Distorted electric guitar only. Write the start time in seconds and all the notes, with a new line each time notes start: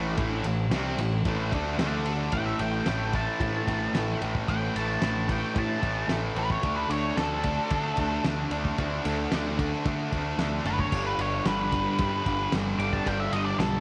Already playing: A2 E3 A3
0.18 A2 E3 A3
0.46 A2 E3
0.72 C3 G3 C4
1.00 A2 E3
1.25 A2 E3 A3
1.52 D3 A3 D4
1.79 D3 A3 D4
2.34 A2 E3 A3
2.60 A2 E3 A3
2.87 A2 E3 A3
3.14 A2 E3 A3
3.41 A2 E3 A3
3.68 A2 E3 A3
3.96 A2 E3 A3
4.22 A2 E3 A3
4.49 A2 E3 A3
4.76 A2 E3 A3
5.02 A2 E3 A3
5.28 A2 E3 A3
5.55 A2 E3 A3
5.81 A2 E3 A3
6.08 A2 E3 A3
6.36 A2 E3 A3
6.63 D3 A3 D4
6.90 D3 A3 D4
7.17 D3 A3 D4
7.44 D3 A3 D4
7.71 D3 A3 D4
7.98 D3 A3 D4
8.25 D3 A3 D4
8.52 D3 A3 D4
8.78 D3 A3 D4
9.05 D3 A3 D4
9.32 D3 A3 D4
9.58 D3 A3 D4
9.85 D3 A3 D4
10.12 D3 A3 D4
10.39 D3 A3 D4
10.66 D3 A3 D4
10.92 G2 D3 G3
11.20 G2 D3 G3
11.46 G2 D3 G3
11.73 G2 D3 G3
12.00 G2 D3 G3
12.27 G2 D3 G3
12.53 G2 D3 G3
12.80 G2 D3 G3
13.07 G2 D3 G3
13.33 G2 D3 G3
13.60 G2 D3 G3